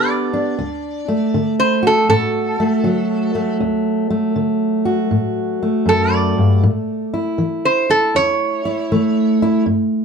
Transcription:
0.00 0.52 D3 medium
0.00 0.55 B3 medium
0.00 0.33 D4 medium
0.00 0.55 G4 medium
0.07 1.55 D5 medium
0.33 1.08 D4 medium
0.58 1.28 D2 medium
1.08 2.59 A3 medium
1.34 2.04 D3 medium
1.60 1.83 C5 medium
1.83 3.57 F#4 medium
1.87 2.08 A4 medium
2.09 2.79 A2 medium
2.09 3.57 A4 medium
2.60 3.34 A3 medium
2.84 3.54 D3 medium
2.84 6.63 F#3 medium
3.35 4.10 A3 medium
3.60 4.31 D2 medium
4.10 5.61 A3 medium
4.36 5.06 D3 medium
4.85 6.60 F#4 medium
5.11 5.82 A2 medium
5.63 8.90 A3 medium
5.86 6.36 F#2 medium
5.86 6.13 A4 medium
6.13 6.62 D5 medium
6.38 6.64 G2 medium
6.63 7.34 A2 medium
7.14 7.89 E4 medium
7.38 8.09 E3 medium
7.65 7.89 C5 medium
7.90 8.64 E4 medium
7.90 8.14 A4 medium
8.15 8.85 E2 medium
8.15 9.63 C#5 medium
8.65 9.40 E4 medium
8.92 9.61 E3 medium
8.92 9.63 A3 medium
9.42 9.64 E4 medium
9.66 10.05 G2 medium

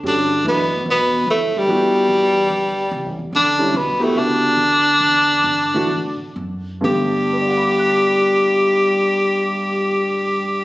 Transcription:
0.03 0.43 G2 medium
0.03 0.43 D3 medium
0.03 0.27 G3 soft
0.03 0.28 C#4 soft
0.03 0.28 F#4 soft
0.03 0.28 A4 soft
0.07 0.44 D4 medium
0.44 0.84 F#2 medium
0.44 0.84 B2 medium
0.44 0.68 E3 medium
0.44 0.69 A3 soft
0.44 0.69 D4 soft
0.44 0.69 E4 medium
0.48 0.85 B3 medium
0.86 1.26 E2 medium
0.86 1.24 B2 medium
0.91 1.27 B3 medium
1.27 1.67 D2 medium
1.27 1.57 A2 medium
1.27 1.60 A3 medium
1.55 3.19 G2 medium
1.55 3.20 G3 medium
1.68 2.08 A1 medium
1.68 2.31 B3 soft
1.68 2.31 E4 medium
1.68 2.31 F#4 medium
1.68 2.31 G4 medium
2.08 2.49 E2 medium
2.50 2.90 D2 medium
2.91 3.06 C#2 medium
3.06 3.18 A1 medium
3.19 3.32 E1 medium
3.33 3.73 A1 medium
3.33 3.77 D3 medium
3.33 3.78 D4 medium
3.59 3.72 D3 medium
3.59 3.73 G3 medium
3.59 3.73 C#4 medium
3.59 3.73 E4 medium
3.74 4.14 B1 medium
3.74 4.04 B2 medium
3.74 4.05 B3 medium
4.00 4.17 A2 medium
4.00 4.20 A3 medium
4.00 4.54 B3 medium
4.00 4.54 E4 medium
4.00 4.54 F#4 medium
4.00 4.55 G4 medium
4.15 4.56 C#2 medium
4.15 6.35 D3 medium
4.15 6.37 D4 medium
4.57 4.99 D2 medium
5.00 5.43 E2 medium
5.44 5.88 G2 medium
5.74 5.88 E3 medium
5.74 5.88 A3 medium
5.74 5.88 D4 medium
5.74 5.89 F#4 medium
5.89 6.17 A2 medium
6.20 muted upright bass stroke soft
6.36 6.82 F#2 medium
6.80 10.64 G1 medium
6.80 10.64 G2 medium
6.80 10.64 D3 medium
6.80 10.64 G3 medium
6.80 10.64 A3 medium
6.80 10.64 B3 soft
6.80 10.64 G4 medium
6.85 10.64 G4 medium
7.33 10.64 B4 soft
7.40 10.64 D5 soft
7.49 10.64 F#5 soft
7.57 10.64 B5 soft
7.68 10.64 D6 soft
7.78 10.64 F#6 soft
7.90 10.64 B6 soft

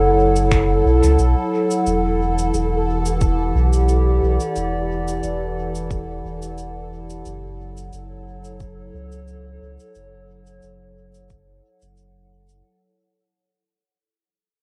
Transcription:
0.00 0.82 F#1 medium
0.00 1.86 F#3 medium
0.00 12.65 E4 medium
0.00 2.97 A4 medium
0.00 12.66 A4 medium
0.00 1.86 C#5 medium
0.00 12.64 F#5 medium
0.36 shaker soft
0.52 finger snap medium
0.52 kick loud
0.52 shaker soft
0.85 1.01 B1 medium
1.03 1.17 C#2 medium
1.03 shaker soft
1.19 1.35 B1 medium
1.19 shaker soft
1.71 shaker soft
1.86 2.51 E1 medium
1.86 7.26 E3 medium
1.86 shaker soft
2.39 shaker soft
2.54 3.52 E1 medium
2.54 shaker soft
2.65 7.26 G4 medium
3.06 shaker soft
3.21 kick medium
3.21 shaker soft
3.47 7.26 D5 medium
3.55 4.19 B1 medium
3.73 shaker soft
3.89 shaker soft
4.22 4.38 B1 medium
4.40 shaker soft
4.56 5.20 E1 medium
4.56 shaker soft
5.08 shaker soft
5.23 6.21 E1 loud
5.23 shaker soft
5.75 shaker soft
5.91 kick medium
5.91 shaker soft
6.24 7.22 E1 medium
6.42 shaker soft
6.58 shaker soft
7.10 shaker soft
7.25 7.90 F#1 medium
7.25 12.65 F#3 medium
7.25 shaker soft
7.49 12.65 C#5 medium
7.67 12.65 A4 medium
7.77 shaker soft
7.93 8.91 F#1 medium
7.93 shaker soft
8.44 shaker soft
8.60 kick medium
8.60 shaker soft
8.94 9.58 C#2 medium
9.12 shaker soft
9.28 shaker soft
9.62 9.77 C#2 medium
9.80 shaker soft
9.95 10.60 F#1 medium
9.95 shaker soft
10.47 shaker soft
10.62 11.61 F#1 medium
10.62 shaker soft
11.14 shaker soft
11.30 kick medium
11.30 shaker soft
11.82 12.62 F#1 loud
11.82 shaker soft
11.97 shaker soft
12.49 shaker soft

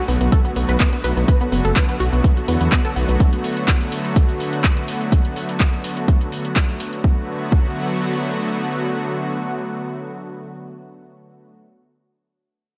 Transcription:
0.00 7.00 D3 medium
0.00 7.00 F#3 medium
0.00 7.00 A3 medium
0.00 7.00 B3 medium
0.00 7.00 F#4 medium
0.08 0.17 B1 medium
0.08 0.16 B3 medium
0.08 open hi-hat loud
0.21 0.29 B1 medium
0.21 0.28 B3 medium
0.21 closed hi-hat soft
0.32 0.40 A4 medium
0.32 kick loud
0.32 closed hi-hat medium
0.45 0.52 B3 medium
0.45 closed hi-hat soft
0.56 0.65 B1 loud
0.56 0.64 B3 medium
0.56 open hi-hat loud
0.69 0.77 B1 medium
0.69 0.76 B4 loud
0.69 closed hi-hat soft
0.80 0.88 B3 medium
0.80 kick loud
0.80 clap loud
0.80 closed hi-hat loud
0.93 1.00 B3 medium
0.93 closed hi-hat soft
1.04 1.13 B1 medium
1.04 1.12 B4 medium
1.04 open hi-hat loud
1.17 1.24 B1 medium
1.17 1.24 B3 medium
1.17 closed hi-hat soft
1.28 1.36 B4 medium
1.28 kick loud
1.28 closed hi-hat medium
1.41 1.48 B3 medium
1.41 closed hi-hat soft
1.52 1.61 F#1 medium
1.52 1.60 B3 medium
1.52 open hi-hat loud
1.65 1.72 F#1 medium
1.65 1.72 A4 loud
1.65 closed hi-hat soft
1.76 1.84 B3 medium
1.76 kick loud
1.76 clap loud
1.76 closed hi-hat medium
1.89 1.96 B3 medium
1.89 closed hi-hat soft
2.00 2.09 B1 medium
2.00 2.08 F#4 medium
2.00 open hi-hat loud
2.13 2.21 B1 medium
2.13 2.20 B3 medium
2.13 closed hi-hat soft
2.24 2.32 B3 medium
2.24 kick loud
2.24 closed hi-hat medium
2.37 closed hi-hat soft
2.48 2.57 E2 medium
2.48 2.56 B3 medium
2.48 open hi-hat loud
2.61 2.69 E2 medium
2.61 2.68 B3 medium
2.61 closed hi-hat soft
2.72 2.80 B3 medium
2.72 kick loud
2.72 clap loud
2.72 closed hi-hat medium
2.85 2.92 A4 medium
2.85 closed hi-hat soft
2.96 3.05 B1 medium
2.96 3.04 B3 medium
2.96 open hi-hat loud
3.09 3.17 B1 medium
3.09 3.16 B3 medium
3.09 closed hi-hat soft
3.20 kick loud
3.20 closed hi-hat medium
3.33 closed hi-hat soft
3.44 open hi-hat loud
3.57 closed hi-hat soft
3.68 kick loud
3.68 clap loud
3.68 closed hi-hat medium
3.81 closed hi-hat soft
3.92 open hi-hat loud
4.05 closed hi-hat soft
4.16 kick loud
4.16 closed hi-hat medium
4.29 closed hi-hat soft
4.40 open hi-hat loud
4.53 closed hi-hat soft
4.64 kick loud
4.64 clap loud
4.64 closed hi-hat medium
4.77 closed hi-hat soft
4.88 open hi-hat loud
5.01 closed hi-hat soft
5.12 kick loud
5.12 closed hi-hat medium
5.25 closed hi-hat soft
5.36 open hi-hat loud
5.49 closed hi-hat soft
5.60 kick loud
5.60 clap loud
5.60 closed hi-hat medium
5.73 closed hi-hat soft
5.84 open hi-hat loud
5.97 closed hi-hat soft
6.08 kick loud
6.08 closed hi-hat medium
6.21 closed hi-hat soft
6.32 open hi-hat loud
6.45 closed hi-hat soft
6.56 kick loud
6.56 clap loud
6.56 closed hi-hat medium
6.69 closed hi-hat soft
6.80 open hi-hat loud
6.93 closed hi-hat soft
7.04 11.55 D3 medium
7.04 11.55 F#3 medium
7.04 11.55 A3 medium
7.04 11.55 B3 medium
7.04 11.55 F#4 medium
7.04 kick loud
7.52 kick loud

